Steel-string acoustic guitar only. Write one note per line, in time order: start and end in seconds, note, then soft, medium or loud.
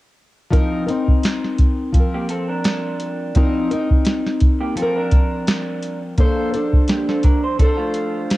0.51 0.87 F3 medium
0.51 0.88 C4 medium
0.51 0.87 D#4 medium
0.51 0.85 A#4 medium
0.87 1.94 C4 soft
0.87 1.94 D#4 soft
0.87 1.98 A#4 soft
1.92 3.34 F3 soft
1.92 3.36 C4 medium
2.00 3.37 A#4 medium
3.35 3.71 F3 medium
3.35 3.71 C4 medium
3.35 3.72 D#4 medium
3.35 3.69 A#4 medium
3.71 4.78 C4 soft
3.71 4.78 D#4 soft
3.71 4.81 A#4 soft
4.75 8.25 F3 medium
4.75 6.17 C4 medium
4.82 6.19 A#4 medium
6.18 6.53 A#3 medium
6.18 6.54 D4 medium
6.18 6.53 A4 medium
6.18 6.51 C5 medium
6.52 7.59 D4 soft
6.52 7.60 A4 soft
6.52 7.63 C5 soft
7.60 8.37 D4 medium
7.60 8.37 A4 medium
7.64 8.37 C5 medium